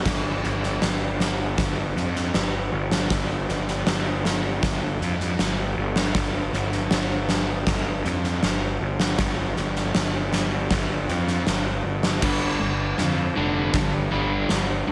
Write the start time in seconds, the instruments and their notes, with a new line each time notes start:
0.05 picked electric bass G1, kick, snare, crash
0.44 picked electric bass G1, snare
0.63 snare
0.82 picked electric bass G1, snare
1.20 snare
1.58 picked electric bass G1, kick, snare
1.96 picked electric bass F2, snare
2.16 snare
2.34 picked electric bass G1, snare
2.72 picked electric bass G1
2.91 snare
3.10 picked electric bass G1, kick, snare
3.49 picked electric bass G1, snare
3.68 snare
3.87 picked electric bass G1, snare
4.25 snare
4.63 picked electric bass G1, kick, snare
5.01 picked electric bass F2, snare
5.20 snare
5.39 picked electric bass G1, snare
5.77 picked electric bass G1
5.96 snare
6.15 picked electric bass G1, kick, snare
6.53 picked electric bass G1, snare
6.72 snare
6.91 picked electric bass G1, snare
7.29 snare
7.67 picked electric bass G1, kick, snare
8.05 picked electric bass F2, snare
8.24 snare
8.43 picked electric bass G1, snare
8.81 picked electric bass G1
9.00 snare
9.19 picked electric bass G1, kick, snare
9.56 picked electric bass G1, snare
9.76 snare
9.95 picked electric bass G1, snare
10.33 snare
10.71 picked electric bass G1, kick, snare
11.08 picked electric bass F2, snare
11.28 snare
11.47 picked electric bass G1, snare
11.85 picked electric bass G1
12.03 snare
12.22 picked electric bass G1, distorted electric guitar G2 D3 G3, kick, snare, crash
12.60 picked electric bass G1, distorted electric guitar G2 D3
12.98 picked electric bass F2, distorted electric guitar G2 D3, snare
13.35 picked electric bass F1, distorted electric guitar G2 D3 G3
13.73 picked electric bass G1, distorted electric guitar G2 D3, kick, snare
14.11 picked electric bass G1, distorted electric guitar G2 D3 G3
14.49 picked electric bass G1, distorted electric guitar G2 D3, snare
14.88 distorted electric guitar G2 D3, picked electric bass G2